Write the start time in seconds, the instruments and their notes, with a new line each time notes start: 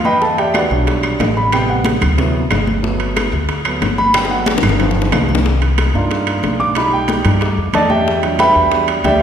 Already playing: upright bass E2
0.05 grand piano B4 D#5 G5 B5, high bongo, high conga
0.21 grand piano A4 A5, high bongo, high conga
0.38 grand piano G4 D5 E5 G5, high conga, high timbale
0.54 grand piano F#4 B4 D5 F#5, high bongo, high conga, high timbale, claves
0.70 upright bass B1, grand piano F#3 G3 D4, high bongo, high conga
0.87 high bongo, high conga, high timbale
1.03 high conga, high timbale, claves
1.19 upright bass A1, high bongo, low bongo, high conga, high timbale, low timbale
1.37 grand piano B5, high bongo
1.52 grand piano C3 G3 B3 G5, high bongo, high conga, high timbale, claves
1.69 grand piano F#5, high conga
1.84 high bongo, high conga, high timbale
2.01 upright bass D2, high bongo, low conga, high timbale, claves
2.18 grand piano C3 E3 F#3 B3, high bongo, high conga, high timbale
2.34 high conga
2.50 upright bass G1, high bongo, low bongo, high conga, high timbale, low timbale, claves
2.67 high bongo, high conga
2.83 grand piano F#3 A3 B3, high bongo, high conga
3.00 high conga, high timbale
3.16 high bongo, high conga, high timbale, claves
3.32 upright bass D2, high bongo, high conga
3.49 high bongo, high conga, high timbale
3.65 grand piano F#3 A3 B3, high conga, high timbale, claves
3.81 upright bass G1, high bongo, low bongo, high conga, high timbale
3.98 grand piano B5, high bongo, high conga
4.14 grand piano F#3 A3 B3 G5, high bongo, high conga, high timbale, claves
4.25 high bongo
4.31 grand piano F#5, high conga
4.46 high bongo, high conga, high timbale
4.58 low bongo
4.63 upright bass G1, low conga, high timbale, claves
4.69 low bongo
4.79 grand piano D#3 F3 B3, low bongo, high conga, high timbale
4.91 low bongo
4.96 high conga
5.02 low bongo
5.12 upright bass C2, low bongo, high conga, high timbale, low timbale, claves
5.29 high conga
5.35 low bongo
5.45 high bongo, high conga
5.62 high conga, high timbale
5.78 high bongo, high conga, high timbale
5.94 upright bass G2, grand piano A#3 D4 D#4 F4, high bongo, high conga
6.11 high bongo, high conga, high timbale
6.27 high conga, high timbale
6.43 upright bass B1, high bongo, low bongo, high conga, high timbale
6.60 grand piano D6, high bongo, high conga
6.75 grand piano G3 A3 D#4 B5, high bongo, high conga, high timbale
6.93 grand piano G5, high conga
7.08 high bongo, high conga, high timbale
7.25 upright bass G2, grand piano G3 A3 D#4, high bongo, low conga, high timbale
7.41 high bongo, high conga, high timbale
7.57 upright bass F2, high conga
7.73 upright bass E2, grand piano A4 D5 D#5 A5, high bongo, low bongo, high conga, high timbale
7.90 grand piano G4 D5 E5 G5, high bongo, high conga
8.07 high bongo, high conga
8.22 grand piano F#3 G3 D4, high conga, high timbale
8.39 grand piano B4 E5 G5 B5, high bongo, high conga, high timbale
8.55 upright bass E2, high bongo, high conga
8.71 high bongo, high conga, high timbale
8.88 high conga, high timbale
9.04 upright bass D2, grand piano G4 D5 E5 G5, high bongo, low bongo, high conga, high timbale